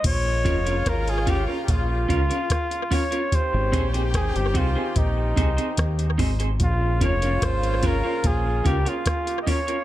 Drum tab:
CC |x---------------|----------------|----------------|
HH |x-xxxxx-x-xxxxox|x-xxxxx-x-xxxxox|x-xxxxx-x-xxxxox|
SD |----r-------r---|----r-------r---|----r-------r---|
BD |o-o-o-o-o-o-o-o-|o-o-o-o-o-o-o-o-|o-o-o-o-o-o-o-o-|